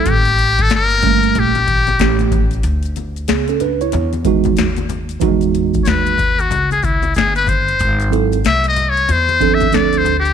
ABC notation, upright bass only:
X:1
M:4/4
L:1/8
Q:"Swing 16ths" 1/4=93
K:Alyd
V:1 name="Upright bass" clef=bass
A,,,2 =G,,,2 _B,,,2 A,,,2 | =D,,2 C,,2 E,,2 ^D,,2 | E,,2 D,,2 C,,2 =G,,,2 | G,,,2 ^B,,,2 E,,2 =D,,2 |]